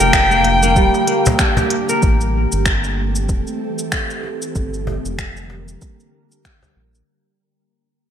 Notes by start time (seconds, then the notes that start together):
Already playing: D3 G3 A#3 D4 G4 A#4 G5
0.00 F1 A#4, cabasa
0.13 finger snap, kick, cajon slap, cabasa
0.31 A#3, cabasa
0.44 cajon slap, closed hi-hat
0.63 A#3, cabasa
0.76 D1 G3, kick, cabasa
0.94 cajon slap, cabasa
1.07 A#3, closed hi-hat
1.26 cajon bass, cabasa
1.39 D4, finger snap, kick, cabasa
1.57 G4, cajon bass, cajon slap, cabasa
1.70 closed hi-hat
1.89 A#4, cabasa
2.02 A1 E3 A3 C4 G4 A4, kick, cabasa
2.21 cabasa
2.52 G1, cabasa
2.66 finger snap, kick, cabasa
2.84 cabasa
3.15 cabasa
3.29 E1, kick, cabasa
3.47 cabasa
3.79 cabasa
3.92 finger snap, kick, cabasa
4.10 cabasa
4.23 cajon slap
4.42 cabasa
4.55 G1 D3 G3 A#3 A#4, kick, cabasa
4.74 cabasa
4.87 cajon bass
5.05 F1, cabasa
5.19 finger snap, kick, cabasa
5.37 cabasa
5.50 cajon slap
5.68 cabasa
5.82 kick, cabasa
6.00 cabasa
6.32 cabasa
6.45 finger snap, kick, cabasa
6.62 cajon bass, cajon slap, cabasa
6.76 A#1
6.95 cabasa